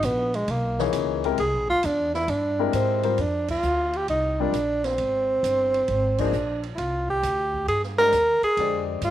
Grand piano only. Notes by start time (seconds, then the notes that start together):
0.79 E3 A#3 D#4 G#4 C#5
1.24 G#3 C4 E4 G4 A#4
2.59 G#3 C4 E4 G4 A#4
3.03 G3 C4 F4 A#4 C5
4.40 G3 C4 F4 A#4 D5
6.19 F3 A#3 D#4 G#4 C5
7.98 G#3 D4 G4 C5 D#5
8.58 D3 G#3 G4 C5 D5